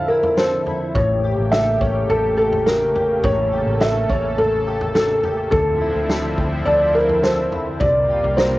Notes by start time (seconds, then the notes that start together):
Already playing: D3 F3 C4 E4 A4
0.08 E4 A#4
0.23 floor tom
0.37 A4 C5, snare
0.66 E4, floor tom
0.95 A1 A2 C#3 A3 A#3 G4 C#5, kick, floor tom
1.24 G4
1.38 A1
1.52 A4 E5, snare
1.81 A1 C#4 C#5, kick, floor tom
2.09 A1 A4, floor tom
2.37 G4 A4
2.52 floor tom
2.66 A#4, snare
2.95 G4, floor tom
3.24 A1 A2 A4 C#5, kick, floor tom
3.52 G4
3.66 A1
3.81 A4 E5, snare
4.09 A1 C#4 C#5, kick, floor tom
4.38 A4, floor tom
4.67 G4
4.81 floor tom
4.95 A4, snare
5.23 G4, floor tom
5.51 D2 D3 F3 C4 E4 A4, kick, floor tom
5.81 E4
5.96 D2
6.09 A4, snare
6.38 D2 C4, kick, floor tom
6.66 D2 A4 D5, floor tom
6.95 E4 A#4
7.09 floor tom
7.23 A4 C5, snare
7.52 E4, floor tom
7.80 C2 C3 G3 A#3 F4 D5, kick, floor tom
8.09 G4
8.24 C2, floor tom
8.37 A#4 C5, snare